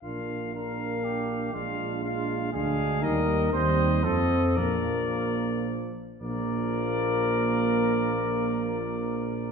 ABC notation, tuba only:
X:1
M:3/4
L:1/8
Q:1/4=112
K:Bb
V:1 name="Tuba" clef=bass
B,,,6 | B,,,4 D,,2 | E,,2 E,,2 F,,2 | B,,,4- B,,, z |
B,,,6- | B,,,6 |]